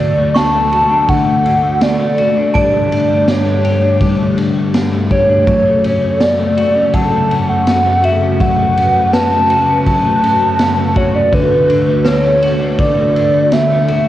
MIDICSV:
0, 0, Header, 1, 6, 480
1, 0, Start_track
1, 0, Key_signature, 2, "major"
1, 0, Tempo, 731707
1, 1672, Time_signature, 4, 2, 24, 8
1, 9238, End_track
2, 0, Start_track
2, 0, Title_t, "Synth bell"
2, 0, Program_c, 0, 98
2, 226, Note_on_c, 0, 85, 83
2, 1139, Note_off_c, 0, 85, 0
2, 1664, Note_on_c, 0, 81, 57
2, 1667, Note_on_c, 0, 98, 70
2, 2578, Note_off_c, 0, 81, 0
2, 2579, Note_off_c, 0, 98, 0
2, 4551, Note_on_c, 0, 78, 66
2, 5461, Note_off_c, 0, 78, 0
2, 5992, Note_on_c, 0, 71, 66
2, 6902, Note_off_c, 0, 71, 0
2, 7902, Note_on_c, 0, 71, 81
2, 8817, Note_off_c, 0, 71, 0
2, 9238, End_track
3, 0, Start_track
3, 0, Title_t, "Soft synth lead"
3, 0, Program_c, 1, 80
3, 0, Note_on_c, 1, 74, 107
3, 240, Note_on_c, 1, 81, 118
3, 250, Note_off_c, 1, 74, 0
3, 715, Note_on_c, 1, 78, 101
3, 725, Note_off_c, 1, 81, 0
3, 1198, Note_on_c, 1, 74, 106
3, 1208, Note_off_c, 1, 78, 0
3, 1675, Note_off_c, 1, 74, 0
3, 1682, Note_on_c, 1, 74, 95
3, 2168, Note_on_c, 1, 73, 81
3, 2177, Note_off_c, 1, 74, 0
3, 2880, Note_off_c, 1, 73, 0
3, 3356, Note_on_c, 1, 73, 92
3, 3466, Note_off_c, 1, 73, 0
3, 3474, Note_on_c, 1, 73, 107
3, 4071, Note_on_c, 1, 74, 103
3, 4081, Note_off_c, 1, 73, 0
3, 4553, Note_on_c, 1, 81, 107
3, 4563, Note_off_c, 1, 74, 0
3, 4915, Note_on_c, 1, 78, 104
3, 4925, Note_off_c, 1, 81, 0
3, 5278, Note_on_c, 1, 76, 103
3, 5288, Note_off_c, 1, 78, 0
3, 5517, Note_on_c, 1, 78, 109
3, 5527, Note_off_c, 1, 76, 0
3, 5992, Note_on_c, 1, 81, 111
3, 6002, Note_off_c, 1, 78, 0
3, 6468, Note_off_c, 1, 81, 0
3, 6472, Note_on_c, 1, 81, 104
3, 7197, Note_on_c, 1, 73, 99
3, 7207, Note_off_c, 1, 81, 0
3, 7314, Note_off_c, 1, 73, 0
3, 7318, Note_on_c, 1, 74, 96
3, 7440, Note_on_c, 1, 71, 101
3, 7450, Note_off_c, 1, 74, 0
3, 7920, Note_on_c, 1, 73, 92
3, 7930, Note_off_c, 1, 71, 0
3, 8392, Note_off_c, 1, 73, 0
3, 8396, Note_on_c, 1, 74, 97
3, 8874, Note_on_c, 1, 76, 106
3, 8884, Note_off_c, 1, 74, 0
3, 9238, Note_off_c, 1, 76, 0
3, 9238, End_track
4, 0, Start_track
4, 0, Title_t, "Analog synth pad"
4, 0, Program_c, 2, 89
4, 0, Note_on_c, 2, 38, 84
4, 0, Note_on_c, 2, 50, 77
4, 0, Note_on_c, 2, 57, 82
4, 0, Note_on_c, 2, 66, 76
4, 0, Note_on_c, 2, 69, 91
4, 1647, Note_off_c, 2, 66, 0
4, 1654, Note_off_c, 2, 38, 0
4, 1654, Note_off_c, 2, 57, 0
4, 1656, Note_off_c, 2, 69, 0
4, 1670, Note_on_c, 2, 43, 82
4, 1670, Note_on_c, 2, 67, 74
4, 1671, Note_on_c, 2, 57, 81
4, 1675, Note_on_c, 2, 62, 89
4, 3566, Note_off_c, 2, 50, 0
4, 3572, Note_off_c, 2, 43, 0
4, 3572, Note_off_c, 2, 67, 0
4, 3574, Note_off_c, 2, 62, 0
4, 3585, Note_on_c, 2, 42, 88
4, 3586, Note_on_c, 2, 69, 93
4, 3587, Note_on_c, 2, 49, 80
4, 3587, Note_on_c, 2, 66, 76
4, 5490, Note_off_c, 2, 69, 0
4, 5506, Note_on_c, 2, 71, 94
4, 7403, Note_off_c, 2, 42, 0
4, 7403, Note_off_c, 2, 49, 0
4, 7406, Note_off_c, 2, 57, 0
4, 7410, Note_off_c, 2, 71, 0
4, 7427, Note_on_c, 2, 50, 76
4, 7428, Note_on_c, 2, 57, 80
4, 7429, Note_on_c, 2, 38, 86
4, 7431, Note_on_c, 2, 69, 90
4, 9238, Note_off_c, 2, 38, 0
4, 9238, Note_off_c, 2, 50, 0
4, 9238, Note_off_c, 2, 57, 0
4, 9238, Note_off_c, 2, 66, 0
4, 9238, Note_off_c, 2, 69, 0
4, 9238, End_track
5, 0, Start_track
5, 0, Title_t, "Clean electric guitar"
5, 0, Program_c, 3, 27
5, 0, Note_on_c, 3, 50, 93
5, 0, Note_on_c, 3, 54, 84
5, 0, Note_on_c, 3, 57, 61
5, 0, Note_on_c, 3, 62, 61
5, 0, Note_on_c, 3, 66, 74
5, 114, Note_off_c, 3, 57, 0
5, 117, Note_on_c, 3, 57, 60
5, 232, Note_off_c, 3, 62, 0
5, 235, Note_on_c, 3, 62, 64
5, 350, Note_off_c, 3, 57, 0
5, 352, Note_on_c, 3, 57, 65
5, 469, Note_off_c, 3, 66, 0
5, 471, Note_on_c, 3, 66, 67
5, 589, Note_off_c, 3, 62, 0
5, 592, Note_on_c, 3, 62, 69
5, 710, Note_off_c, 3, 50, 0
5, 713, Note_on_c, 3, 50, 86
5, 831, Note_off_c, 3, 57, 0
5, 834, Note_on_c, 3, 57, 63
5, 950, Note_off_c, 3, 62, 0
5, 953, Note_on_c, 3, 62, 60
5, 1070, Note_off_c, 3, 57, 0
5, 1073, Note_on_c, 3, 57, 54
5, 1087, Note_off_c, 3, 54, 0
5, 1191, Note_off_c, 3, 62, 0
5, 1194, Note_on_c, 3, 62, 63
5, 1309, Note_off_c, 3, 57, 0
5, 1312, Note_on_c, 3, 57, 67
5, 1427, Note_off_c, 3, 66, 0
5, 1435, Note_on_c, 3, 66, 67
5, 1552, Note_off_c, 3, 62, 0
5, 1554, Note_on_c, 3, 62, 61
5, 1676, Note_on_c, 3, 55, 81
5, 1722, Note_off_c, 3, 66, 0
5, 1793, Note_off_c, 3, 57, 0
5, 1795, Note_on_c, 3, 57, 62
5, 1910, Note_off_c, 3, 62, 0
5, 1913, Note_on_c, 3, 62, 60
5, 2033, Note_off_c, 3, 57, 0
5, 2036, Note_on_c, 3, 57, 64
5, 2145, Note_off_c, 3, 62, 0
5, 2153, Note_on_c, 3, 62, 60
5, 2268, Note_off_c, 3, 57, 0
5, 2271, Note_on_c, 3, 57, 63
5, 2393, Note_on_c, 3, 67, 67
5, 2502, Note_off_c, 3, 62, 0
5, 2510, Note_on_c, 3, 62, 68
5, 2625, Note_off_c, 3, 55, 0
5, 2632, Note_on_c, 3, 55, 87
5, 2747, Note_off_c, 3, 57, 0
5, 2750, Note_on_c, 3, 57, 63
5, 2862, Note_off_c, 3, 62, 0
5, 2869, Note_on_c, 3, 62, 63
5, 2986, Note_off_c, 3, 57, 0
5, 2989, Note_on_c, 3, 57, 57
5, 3009, Note_off_c, 3, 50, 0
5, 3104, Note_off_c, 3, 62, 0
5, 3112, Note_on_c, 3, 62, 64
5, 3231, Note_off_c, 3, 57, 0
5, 3234, Note_on_c, 3, 57, 58
5, 3344, Note_off_c, 3, 67, 0
5, 3352, Note_on_c, 3, 67, 68
5, 3464, Note_off_c, 3, 62, 0
5, 3472, Note_on_c, 3, 62, 65
5, 3591, Note_off_c, 3, 55, 0
5, 3594, Note_on_c, 3, 54, 85
5, 3640, Note_off_c, 3, 62, 0
5, 3640, Note_off_c, 3, 67, 0
5, 3709, Note_off_c, 3, 57, 0
5, 3711, Note_on_c, 3, 57, 60
5, 3832, Note_on_c, 3, 61, 58
5, 3947, Note_off_c, 3, 57, 0
5, 3949, Note_on_c, 3, 57, 58
5, 4072, Note_off_c, 3, 61, 0
5, 4189, Note_off_c, 3, 57, 0
5, 4192, Note_on_c, 3, 57, 59
5, 4310, Note_on_c, 3, 66, 66
5, 4429, Note_on_c, 3, 61, 72
5, 4547, Note_off_c, 3, 54, 0
5, 4549, Note_on_c, 3, 54, 86
5, 4667, Note_off_c, 3, 57, 0
5, 4670, Note_on_c, 3, 57, 70
5, 4784, Note_off_c, 3, 61, 0
5, 4792, Note_on_c, 3, 61, 64
5, 4909, Note_off_c, 3, 57, 0
5, 4912, Note_on_c, 3, 57, 58
5, 5025, Note_off_c, 3, 61, 0
5, 5033, Note_on_c, 3, 61, 63
5, 5149, Note_off_c, 3, 57, 0
5, 5152, Note_on_c, 3, 57, 66
5, 5272, Note_off_c, 3, 66, 0
5, 5274, Note_on_c, 3, 66, 71
5, 5385, Note_off_c, 3, 61, 0
5, 5392, Note_on_c, 3, 61, 65
5, 5511, Note_off_c, 3, 54, 0
5, 5513, Note_on_c, 3, 54, 86
5, 5634, Note_off_c, 3, 57, 0
5, 5636, Note_on_c, 3, 57, 65
5, 5749, Note_off_c, 3, 61, 0
5, 5757, Note_on_c, 3, 61, 62
5, 5873, Note_off_c, 3, 57, 0
5, 5876, Note_on_c, 3, 57, 59
5, 5988, Note_off_c, 3, 61, 0
5, 5995, Note_on_c, 3, 61, 68
5, 6109, Note_off_c, 3, 57, 0
5, 6112, Note_on_c, 3, 57, 62
5, 6233, Note_off_c, 3, 66, 0
5, 6236, Note_on_c, 3, 66, 75
5, 6350, Note_off_c, 3, 61, 0
5, 6358, Note_on_c, 3, 61, 71
5, 6473, Note_off_c, 3, 54, 0
5, 6476, Note_on_c, 3, 54, 85
5, 6591, Note_off_c, 3, 57, 0
5, 6593, Note_on_c, 3, 57, 67
5, 6705, Note_off_c, 3, 61, 0
5, 6713, Note_on_c, 3, 61, 67
5, 6828, Note_off_c, 3, 57, 0
5, 6831, Note_on_c, 3, 57, 55
5, 6944, Note_off_c, 3, 61, 0
5, 6952, Note_on_c, 3, 61, 61
5, 7070, Note_off_c, 3, 57, 0
5, 7072, Note_on_c, 3, 57, 67
5, 7189, Note_off_c, 3, 66, 0
5, 7191, Note_on_c, 3, 66, 74
5, 7306, Note_off_c, 3, 61, 0
5, 7314, Note_on_c, 3, 61, 61
5, 7428, Note_off_c, 3, 54, 0
5, 7430, Note_on_c, 3, 50, 88
5, 7481, Note_off_c, 3, 61, 0
5, 7551, Note_off_c, 3, 57, 0
5, 7554, Note_on_c, 3, 57, 64
5, 7674, Note_on_c, 3, 62, 66
5, 7787, Note_off_c, 3, 57, 0
5, 7790, Note_on_c, 3, 57, 60
5, 7909, Note_off_c, 3, 62, 0
5, 7912, Note_on_c, 3, 62, 63
5, 8026, Note_off_c, 3, 57, 0
5, 8028, Note_on_c, 3, 57, 66
5, 8148, Note_off_c, 3, 66, 0
5, 8151, Note_on_c, 3, 66, 67
5, 8271, Note_off_c, 3, 62, 0
5, 8274, Note_on_c, 3, 62, 68
5, 8391, Note_off_c, 3, 50, 0
5, 8394, Note_on_c, 3, 50, 92
5, 8508, Note_off_c, 3, 57, 0
5, 8511, Note_on_c, 3, 57, 70
5, 8631, Note_off_c, 3, 62, 0
5, 8633, Note_on_c, 3, 62, 64
5, 8747, Note_off_c, 3, 57, 0
5, 8750, Note_on_c, 3, 57, 58
5, 8862, Note_off_c, 3, 62, 0
5, 8865, Note_on_c, 3, 62, 61
5, 8986, Note_off_c, 3, 57, 0
5, 8989, Note_on_c, 3, 57, 72
5, 9108, Note_off_c, 3, 66, 0
5, 9111, Note_on_c, 3, 66, 73
5, 9230, Note_off_c, 3, 62, 0
5, 9238, Note_off_c, 3, 50, 0
5, 9238, Note_off_c, 3, 57, 0
5, 9238, Note_off_c, 3, 66, 0
5, 9238, End_track
6, 0, Start_track
6, 0, Title_t, "Drums"
6, 233, Note_on_c, 9, 38, 108
6, 235, Note_on_c, 9, 51, 64
6, 235, Note_on_c, 9, 54, 68
6, 299, Note_off_c, 9, 38, 0
6, 300, Note_off_c, 9, 54, 0
6, 301, Note_off_c, 9, 51, 0
6, 475, Note_on_c, 9, 51, 45
6, 541, Note_off_c, 9, 51, 0
6, 712, Note_on_c, 9, 51, 63
6, 713, Note_on_c, 9, 36, 90
6, 777, Note_off_c, 9, 51, 0
6, 778, Note_off_c, 9, 36, 0
6, 955, Note_on_c, 9, 51, 44
6, 1021, Note_off_c, 9, 51, 0
6, 1188, Note_on_c, 9, 51, 55
6, 1190, Note_on_c, 9, 54, 70
6, 1192, Note_on_c, 9, 38, 112
6, 1254, Note_off_c, 9, 51, 0
6, 1256, Note_off_c, 9, 54, 0
6, 1257, Note_off_c, 9, 38, 0
6, 1430, Note_on_c, 9, 51, 46
6, 1496, Note_off_c, 9, 51, 0
6, 1673, Note_on_c, 9, 36, 112
6, 1673, Note_on_c, 9, 51, 58
6, 1739, Note_off_c, 9, 36, 0
6, 1739, Note_off_c, 9, 51, 0
6, 1916, Note_on_c, 9, 51, 51
6, 1982, Note_off_c, 9, 51, 0
6, 2152, Note_on_c, 9, 38, 102
6, 2153, Note_on_c, 9, 51, 63
6, 2153, Note_on_c, 9, 54, 65
6, 2217, Note_off_c, 9, 38, 0
6, 2219, Note_off_c, 9, 51, 0
6, 2219, Note_off_c, 9, 54, 0
6, 2393, Note_on_c, 9, 51, 50
6, 2459, Note_off_c, 9, 51, 0
6, 2630, Note_on_c, 9, 51, 62
6, 2631, Note_on_c, 9, 36, 88
6, 2696, Note_off_c, 9, 36, 0
6, 2696, Note_off_c, 9, 51, 0
6, 2872, Note_on_c, 9, 51, 43
6, 2938, Note_off_c, 9, 51, 0
6, 3110, Note_on_c, 9, 51, 62
6, 3111, Note_on_c, 9, 54, 68
6, 3113, Note_on_c, 9, 38, 109
6, 3175, Note_off_c, 9, 51, 0
6, 3177, Note_off_c, 9, 54, 0
6, 3178, Note_off_c, 9, 38, 0
6, 3350, Note_on_c, 9, 51, 43
6, 3352, Note_on_c, 9, 36, 92
6, 3416, Note_off_c, 9, 51, 0
6, 3417, Note_off_c, 9, 36, 0
6, 3590, Note_on_c, 9, 36, 120
6, 3590, Note_on_c, 9, 51, 60
6, 3655, Note_off_c, 9, 51, 0
6, 3656, Note_off_c, 9, 36, 0
6, 3832, Note_on_c, 9, 51, 50
6, 3898, Note_off_c, 9, 51, 0
6, 4069, Note_on_c, 9, 38, 111
6, 4071, Note_on_c, 9, 51, 63
6, 4071, Note_on_c, 9, 54, 69
6, 4135, Note_off_c, 9, 38, 0
6, 4136, Note_off_c, 9, 51, 0
6, 4136, Note_off_c, 9, 54, 0
6, 4312, Note_on_c, 9, 51, 49
6, 4378, Note_off_c, 9, 51, 0
6, 4550, Note_on_c, 9, 36, 96
6, 4551, Note_on_c, 9, 51, 65
6, 4616, Note_off_c, 9, 36, 0
6, 4616, Note_off_c, 9, 51, 0
6, 4796, Note_on_c, 9, 51, 47
6, 4862, Note_off_c, 9, 51, 0
6, 5031, Note_on_c, 9, 51, 56
6, 5033, Note_on_c, 9, 54, 69
6, 5034, Note_on_c, 9, 38, 104
6, 5097, Note_off_c, 9, 51, 0
6, 5099, Note_off_c, 9, 54, 0
6, 5100, Note_off_c, 9, 38, 0
6, 5272, Note_on_c, 9, 51, 44
6, 5337, Note_off_c, 9, 51, 0
6, 5513, Note_on_c, 9, 36, 120
6, 5514, Note_on_c, 9, 51, 59
6, 5578, Note_off_c, 9, 36, 0
6, 5580, Note_off_c, 9, 51, 0
6, 5757, Note_on_c, 9, 51, 50
6, 5822, Note_off_c, 9, 51, 0
6, 5994, Note_on_c, 9, 38, 105
6, 5995, Note_on_c, 9, 51, 64
6, 5995, Note_on_c, 9, 54, 72
6, 6059, Note_off_c, 9, 38, 0
6, 6061, Note_off_c, 9, 51, 0
6, 6061, Note_off_c, 9, 54, 0
6, 6232, Note_on_c, 9, 51, 47
6, 6298, Note_off_c, 9, 51, 0
6, 6471, Note_on_c, 9, 36, 97
6, 6471, Note_on_c, 9, 51, 69
6, 6537, Note_off_c, 9, 36, 0
6, 6537, Note_off_c, 9, 51, 0
6, 6715, Note_on_c, 9, 51, 49
6, 6781, Note_off_c, 9, 51, 0
6, 6948, Note_on_c, 9, 51, 57
6, 6950, Note_on_c, 9, 54, 70
6, 6951, Note_on_c, 9, 38, 106
6, 7013, Note_off_c, 9, 51, 0
6, 7015, Note_off_c, 9, 54, 0
6, 7017, Note_off_c, 9, 38, 0
6, 7190, Note_on_c, 9, 51, 41
6, 7193, Note_on_c, 9, 36, 99
6, 7256, Note_off_c, 9, 51, 0
6, 7258, Note_off_c, 9, 36, 0
6, 7432, Note_on_c, 9, 36, 116
6, 7433, Note_on_c, 9, 51, 60
6, 7498, Note_off_c, 9, 36, 0
6, 7499, Note_off_c, 9, 51, 0
6, 7674, Note_on_c, 9, 51, 53
6, 7740, Note_off_c, 9, 51, 0
6, 7908, Note_on_c, 9, 38, 107
6, 7910, Note_on_c, 9, 51, 64
6, 7910, Note_on_c, 9, 54, 75
6, 7974, Note_off_c, 9, 38, 0
6, 7975, Note_off_c, 9, 54, 0
6, 7976, Note_off_c, 9, 51, 0
6, 8152, Note_on_c, 9, 51, 53
6, 8218, Note_off_c, 9, 51, 0
6, 8389, Note_on_c, 9, 51, 62
6, 8390, Note_on_c, 9, 36, 95
6, 8454, Note_off_c, 9, 51, 0
6, 8455, Note_off_c, 9, 36, 0
6, 8634, Note_on_c, 9, 51, 47
6, 8700, Note_off_c, 9, 51, 0
6, 8867, Note_on_c, 9, 51, 62
6, 8869, Note_on_c, 9, 54, 69
6, 8870, Note_on_c, 9, 38, 107
6, 8932, Note_off_c, 9, 51, 0
6, 8934, Note_off_c, 9, 54, 0
6, 8936, Note_off_c, 9, 38, 0
6, 9106, Note_on_c, 9, 51, 46
6, 9172, Note_off_c, 9, 51, 0
6, 9238, End_track
0, 0, End_of_file